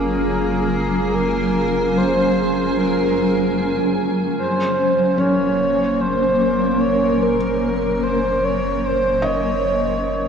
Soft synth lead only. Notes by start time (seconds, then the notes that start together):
Already playing: G#4
1.14 A#4
1.97 C5
2.79 A#4
4.39 C5
5.20 C#5
6.01 C5
6.81 C#5
7.23 A#4
8.03 C5
8.44 C#5
8.86 C5
9.24 C#5